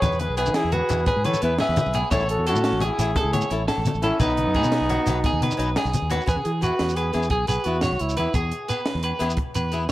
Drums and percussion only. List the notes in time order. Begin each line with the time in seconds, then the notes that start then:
0.02 kick, closed hi-hat, muted conga, low conga, low agogo, shekere
0.12 low conga, shekere
0.20 closed hi-hat, high conga
0.37 closed hi-hat, low agogo, shekere
0.46 muted conga, low conga, shekere
0.54 snare, closed hi-hat
0.72 closed hi-hat, high conga, low conga, low agogo
0.89 closed hi-hat, muted conga, low agogo, shekere
1.06 kick, closed hi-hat, low conga, shekere
1.24 closed hi-hat, high conga, low agogo, shekere
1.34 muted conga, low conga, shekere
1.42 closed hi-hat
1.59 snare, closed hi-hat, low conga, low agogo
1.76 closed hi-hat, muted conga, high conga, low conga, shekere
1.86 shekere
1.94 closed hi-hat, low conga, low agogo
2.11 kick, closed hi-hat, muted conga, low conga, low agogo, shekere
2.20 low conga, shekere
2.29 closed hi-hat
2.46 closed hi-hat, low agogo, shekere
2.55 muted conga, low conga, shekere
2.64 snare, closed hi-hat, low conga
2.80 closed hi-hat, high conga, low conga, low agogo
2.99 closed hi-hat, low agogo, shekere
3.16 kick, closed hi-hat, low conga, shekere
3.33 closed hi-hat, high conga, low agogo, shekere
3.41 muted conga, low conga, shekere
3.51 closed hi-hat
3.68 snare, closed hi-hat, low conga, low agogo
3.85 closed hi-hat, muted conga, high conga, low conga, shekere
3.94 shekere
4.03 closed hi-hat, low conga, low agogo
4.20 kick, closed hi-hat, muted conga, low agogo, shekere
4.30 shekere
4.37 closed hi-hat, high conga
4.47 low conga
4.54 kick, closed hi-hat, low agogo
4.64 muted conga, low conga, shekere
4.72 snare, closed hi-hat
4.81 low conga
4.89 closed hi-hat, high conga, low conga, low agogo
5.07 closed hi-hat, muted conga, low agogo, shekere
5.24 kick, closed hi-hat, low conga
5.42 closed hi-hat, high conga, low agogo
5.51 muted conga, low conga, shekere
5.60 closed hi-hat
5.76 snare, closed hi-hat, low conga, low agogo
5.86 shekere
5.93 closed hi-hat, high conga, low conga, shekere
6.03 low conga
6.10 closed hi-hat, low conga, low agogo
6.20 low conga, shekere
6.27 kick, closed hi-hat, low agogo, shekere
6.45 closed hi-hat
6.62 closed hi-hat, low agogo, shekere
6.79 snare, closed hi-hat
6.89 shekere
6.96 closed hi-hat, low agogo
7.14 snare, closed hi-hat, low agogo
7.23 shekere
7.30 kick, closed hi-hat
7.47 closed hi-hat, low agogo, shekere
7.64 closed hi-hat, shekere
7.81 snare, closed hi-hat, low agogo, shekere
7.99 closed hi-hat, shekere
8.09 shekere
8.17 closed hi-hat, low agogo, shekere
8.34 kick, closed hi-hat, low agogo, shekere
8.52 closed hi-hat
8.69 closed hi-hat, low agogo, shekere
8.86 snare, closed hi-hat
9.03 closed hi-hat, low agogo
9.20 snare, closed hi-hat, low agogo
9.30 shekere
9.37 kick, closed hi-hat
9.54 closed hi-hat, low agogo, shekere
9.72 closed hi-hat, shekere